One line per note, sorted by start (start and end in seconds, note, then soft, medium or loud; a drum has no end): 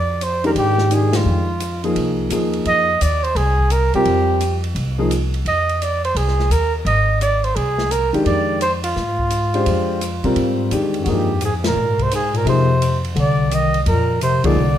0.00 0.52 F2 medium
0.00 0.24 D5 medium
0.21 0.45 C5 medium
0.21 hi-hat pedal medium
0.21 ride medium
0.44 0.88 D#3 medium
0.44 0.89 G#3 medium
0.44 0.89 D4 medium
0.44 0.89 G4 medium
0.44 0.51 A#4 medium
0.44 ride soft
0.55 1.22 G#2 medium
0.55 0.95 G4 medium
0.55 ride medium
0.78 snare soft
0.91 1.44 D#3 medium
0.91 1.45 G#3 medium
0.91 1.45 D4 medium
0.91 1.45 G4 medium
0.91 1.17 G#4 medium
0.91 hi-hat pedal soft
0.91 ride medium
1.13 1.85 F4 medium
1.13 snare medium
1.13 ride medium
1.25 1.92 F2 medium
1.60 hi-hat pedal medium
1.60 ride medium
1.84 2.28 F3 medium
1.84 2.29 A#3 medium
1.84 2.29 D#4 medium
1.84 2.29 G#4 medium
1.84 ride soft
1.96 2.28 C2 medium
1.96 ride medium
2.30 2.63 D#2 medium
2.30 2.84 F3 medium
2.30 2.85 A#3 medium
2.30 2.85 D#4 medium
2.30 2.85 G#4 medium
2.30 hi-hat pedal medium
2.30 ride medium
2.53 ride soft
2.65 2.98 F2 medium
2.65 3.03 D#5 loud
2.65 ride medium
3.01 3.33 D#2 medium
3.01 3.25 D5 medium
3.01 hi-hat pedal medium
3.01 ride medium
3.23 3.37 C5 medium
3.23 ride soft
3.35 3.89 C2 medium
3.35 3.73 G#4 medium
3.35 ride medium
3.59 kick soft
3.70 3.94 A#4 medium
3.70 hi-hat pedal medium
3.70 ride medium
3.94 4.05 C3 medium
3.94 4.39 G3 medium
3.94 4.39 C4 medium
3.94 4.39 F4 medium
3.94 4.60 G4 medium
3.94 4.40 A#4 medium
3.94 ride soft
4.05 4.72 F2 medium
4.05 ride soft
4.41 hi-hat pedal medium
4.41 ride medium
4.64 ride soft
4.75 5.42 C2 medium
4.75 ride medium
4.98 5.09 F3 medium
4.98 5.09 A#3 medium
4.98 5.10 D#4 medium
4.98 5.10 G#4 medium
5.11 hi-hat pedal soft
5.11 ride medium
5.34 ride soft
5.45 6.12 F2 medium
5.45 5.84 D#5 medium
5.45 ride medium
5.69 ride soft
5.82 6.04 D5 medium
5.82 hi-hat pedal soft
5.82 ride medium
6.05 6.18 C5 medium
6.05 ride soft
6.15 6.48 C2 medium
6.15 6.53 G#4 medium
6.15 ride medium
6.28 snare soft
6.39 snare soft
6.50 6.83 D#2 medium
6.50 6.74 A#4 medium
6.50 hi-hat pedal medium
6.50 ride medium
6.85 7.52 G#1 medium
6.85 7.19 D#5 medium
6.85 ride medium
7.21 7.45 D5 medium
7.21 hi-hat pedal medium
7.21 ride medium
7.44 7.57 C5 medium
7.44 ride soft
7.55 8.10 C2 medium
7.55 7.93 G#4 medium
7.55 ride medium
7.78 snare soft
7.91 8.14 A#4 medium
7.91 hi-hat pedal medium
7.91 ride medium
8.13 8.25 D#2 medium
8.13 8.58 D#3 medium
8.13 8.58 G#3 medium
8.13 8.59 D4 medium
8.13 8.59 G4 medium
8.13 ride soft
8.25 8.92 F2 medium
8.25 8.58 D5 medium
8.25 ride soft
8.61 8.72 C5 medium
8.61 hi-hat pedal soft
8.61 ride medium
8.83 10.67 F4 medium
8.83 ride medium
8.96 9.62 G#2 medium
8.96 snare soft
9.19 kick soft
9.30 hi-hat pedal soft
9.30 ride medium
9.54 9.98 G#3 medium
9.54 9.99 D4 medium
9.54 9.99 G4 medium
9.54 9.99 C5 medium
9.54 ride soft
9.66 10.20 F2 medium
9.66 ride medium
10.01 hi-hat pedal medium
10.01 ride medium
10.24 10.35 C3 medium
10.24 10.68 G3 medium
10.24 10.69 C4 medium
10.24 10.69 F4 medium
10.24 10.69 A#4 medium
10.24 ride soft
10.36 10.68 G#2 medium
10.36 ride medium
10.71 11.04 E2 medium
10.71 11.25 D#3 medium
10.71 11.25 G#3 medium
10.71 11.25 D4 medium
10.71 11.25 G4 medium
10.71 hi-hat pedal soft
10.71 ride medium
10.94 ride soft
11.00 11.08 F#2 soft
11.00 11.12 F#4 medium
11.06 11.72 F2 medium
11.06 11.41 G2 medium
11.06 11.27 F3 medium
11.06 11.27 A#3 medium
11.06 11.27 D#4 medium
11.06 11.27 G#4 medium
11.06 ride medium
11.10 11.43 G4 medium
11.41 11.52 G#2 medium
11.41 11.54 G#4 medium
11.41 hi-hat pedal medium
11.41 ride medium
11.64 12.00 A#2 medium
11.64 12.04 A#4 medium
11.64 snare medium
11.64 ride medium
11.75 12.42 G#2 medium
11.98 12.10 C3 medium
11.98 12.13 C5 medium
11.98 kick soft
11.98 ride soft
12.11 12.35 G#2 medium
12.11 12.38 G#4 medium
12.11 hi-hat pedal medium
12.11 ride medium
12.33 12.45 A#2 medium
12.33 12.47 A#4 medium
12.33 ride soft
12.45 13.12 F2 medium
12.45 13.00 C3 medium
12.45 12.66 F3 soft
12.45 12.67 A#3 soft
12.45 12.67 D#4 soft
12.45 12.67 G#4 medium
12.45 ride medium
12.49 13.01 C5 medium
12.82 hi-hat pedal soft
12.82 ride medium
13.05 ride soft
13.15 13.82 C2 medium
13.15 13.51 D3 medium
13.15 ride medium
13.19 13.55 D5 medium
13.50 13.79 D#3 medium
13.50 hi-hat pedal medium
13.50 ride medium
13.54 13.81 D#5 medium
13.74 ride soft
13.85 14.40 F2 medium
13.85 14.18 A#2 medium
13.85 14.20 A#4 medium
13.85 ride medium
14.21 14.46 C3 medium
14.21 14.47 C5 medium
14.21 hi-hat pedal soft
14.21 ride medium
14.44 14.78 D3 medium
14.44 14.55 F3 medium
14.44 14.55 A#3 medium
14.44 14.55 D#4 medium
14.44 14.55 G#4 medium
14.44 14.78 D5 medium
14.44 muted upright bass stroke soft
14.44 kick medium
14.44 ride medium
14.56 14.78 C2 medium